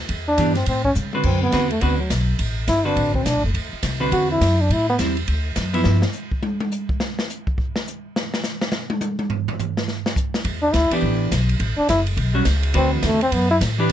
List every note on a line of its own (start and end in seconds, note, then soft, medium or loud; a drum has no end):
0.09 0.37 E2 medium
0.09 kick soft
0.09 ride medium
0.28 0.54 D4 loud
0.38 0.66 G2 medium
0.38 0.54 E3 medium
0.38 0.55 B3 medium
0.38 0.55 D4 medium
0.38 0.55 G4 medium
0.38 kick soft
0.38 hi-hat pedal soft
0.38 ride medium
0.55 0.66 C4 medium
0.55 snare soft
0.55 ride soft
0.66 0.95 A2 medium
0.66 0.84 C4 medium
0.66 kick soft
0.66 ride medium
0.84 0.91 C#4 medium
0.84 kick medium
0.95 1.23 C#3 medium
0.95 hi-hat pedal medium
0.95 high tom soft
1.13 1.51 D3 medium
1.13 1.52 C4 medium
1.13 1.52 F#4 medium
1.13 1.52 B4 medium
1.13 high tom medium
1.23 1.52 F#2 medium
1.23 1.41 C4 medium
1.23 kick medium
1.23 crash medium
1.43 1.70 B3 medium
1.52 1.81 E2 medium
1.52 1.69 D3 medium
1.52 1.69 C4 medium
1.52 1.70 F#4 medium
1.52 1.69 B4 medium
1.52 kick soft
1.52 snare medium
1.52 hi-hat pedal soft
1.52 ride medium
1.71 1.83 A3 medium
1.71 ride soft
1.81 2.10 D2 medium
1.81 1.98 D3 medium
1.81 1.98 B3 medium
1.81 1.98 C4 medium
1.81 1.98 F#4 medium
1.81 1.98 B4 medium
1.81 kick soft
1.81 ride medium
1.98 2.09 F#3 medium
2.10 2.38 B1 medium
2.10 kick soft
2.10 snare medium
2.10 hi-hat pedal medium
2.10 ride medium
2.39 2.67 A1 medium
2.39 kick soft
2.39 ride medium
2.68 2.96 G1 medium
2.68 2.88 E4 medium
2.68 kick soft
2.68 snare medium
2.68 hi-hat pedal medium
2.68 ride medium
2.85 3.23 D3 medium
2.85 3.23 C4 soft
2.85 3.15 D4 medium
2.85 3.23 F#4 medium
2.85 3.24 B4 medium
2.96 3.25 A1 medium
2.96 kick soft
2.96 ride medium
3.14 3.27 C4 medium
3.14 kick medium
3.25 3.35 B1 medium
3.25 3.44 D4 medium
3.25 kick soft
3.25 snare medium
3.25 hi-hat pedal medium
3.25 ride medium
3.35 3.43 A1 medium
3.44 3.53 F#1 medium
3.44 3.51 A3 soft
3.54 3.71 D2 medium
3.54 kick soft
3.54 ride medium
3.73 muted upright bass stroke soft
3.83 4.11 C2 medium
3.83 kick soft
3.83 snare medium
3.83 hi-hat pedal medium
3.83 ride medium
4.00 4.38 D3 medium
4.00 4.39 C4 medium
4.00 4.39 F#4 medium
4.00 4.39 B4 medium
4.11 4.40 E2 medium
4.11 4.29 F#4 medium
4.11 kick soft
4.11 ride medium
4.32 4.62 E4 medium
4.41 4.69 F#2 medium
4.41 kick soft
4.41 snare medium
4.41 hi-hat pedal soft
4.41 ride medium
4.61 4.74 D4 medium
4.69 4.98 A2 medium
4.69 4.89 E4 medium
4.69 kick soft
4.69 ride medium
4.90 4.96 B3 loud
4.98 5.27 E2 medium
4.98 5.15 G3 soft
4.98 5.16 C4 medium
4.98 5.16 E4 medium
4.98 kick soft
4.98 snare medium
4.98 hi-hat pedal medium
4.98 ride medium
5.17 ride soft
5.27 5.56 D2 medium
5.27 kick soft
5.27 ride medium
5.56 5.84 F#2 medium
5.56 kick soft
5.56 snare medium
5.56 hi-hat pedal medium
5.56 ride medium
5.74 6.03 F3 medium
5.74 6.03 B3 medium
5.74 6.03 E4 medium
5.74 ride soft
5.84 6.02 G2 medium
5.84 snare loud
6.02 snare medium
6.13 hi-hat pedal soft
6.32 kick medium
6.43 high tom loud
6.60 high tom medium
6.72 hi-hat pedal medium
6.89 kick medium
7.00 snare loud
7.19 snare medium
7.30 hi-hat pedal medium
7.47 kick medium
7.58 kick medium
7.76 snare loud
7.87 hi-hat pedal medium
8.16 snare loud
8.34 snare loud
8.44 snare medium
8.44 hi-hat pedal medium
8.62 snare medium
8.72 snare loud
8.90 high tom loud
9.01 hi-hat pedal medium
9.01 high tom loud
9.19 high tom medium
9.30 floor tom loud
9.48 floor tom medium
9.59 floor tom medium
9.59 hi-hat pedal medium
9.77 snare medium
9.88 snare medium
10.06 snare loud
10.16 kick medium
10.16 hi-hat pedal medium
10.34 snare medium
10.45 10.73 E2 medium
10.45 kick soft
10.45 ride medium
10.62 10.75 D4 medium
10.73 10.90 D2 medium
10.73 10.92 E4 medium
10.73 kick soft
10.73 snare medium
10.73 hi-hat pedal medium
10.73 ride medium
10.90 11.30 E3 medium
10.90 11.30 B3 medium
10.90 11.30 D4 medium
10.90 11.30 G4 medium
10.90 muted upright bass stroke soft
10.90 ride medium
11.02 11.31 A1 medium
11.02 kick soft
11.31 11.59 B1 medium
11.31 kick soft
11.31 snare medium
11.31 hi-hat pedal medium
11.31 ride medium
11.49 ride soft
11.60 11.77 A1 medium
11.60 kick soft
11.60 ride medium
11.77 11.88 D4 medium
11.77 muted upright bass stroke soft
11.89 12.16 F#1 medium
11.89 12.00 E4 medium
11.89 kick soft
11.89 snare medium
11.89 hi-hat pedal medium
11.89 ride medium
12.07 ride soft
12.17 12.45 B1 medium
12.17 kick soft
12.17 ride medium
12.34 12.44 G3 medium
12.34 12.45 C#4 medium
12.34 12.45 F#4 medium
12.45 12.74 C#2 medium
12.45 kick soft
12.45 snare medium
12.45 hi-hat pedal medium
12.45 ride medium
12.63 ride medium
12.74 13.02 D2 medium
12.74 13.17 D3 medium
12.74 13.17 C4 medium
12.74 12.92 C4 medium
12.74 13.18 F#4 medium
12.74 13.18 B4 medium
12.74 kick soft
12.74 ride medium
12.93 13.07 E3 medium
13.03 13.31 E2 medium
13.03 13.22 A3 medium
13.03 kick soft
13.03 snare medium
13.03 hi-hat pedal medium
13.03 ride medium
13.21 13.35 C4 loud
13.21 ride soft
13.32 13.60 F#2 medium
13.32 13.50 B3 medium
13.32 kick soft
13.32 ride medium
13.51 13.57 E4 loud
13.61 13.89 A2 loud
13.61 kick soft
13.61 snare medium
13.61 hi-hat pedal medium
13.61 ride medium
13.78 13.88 E3 medium
13.78 13.89 D4 medium
13.78 13.89 G4 medium
13.78 13.89 B4 medium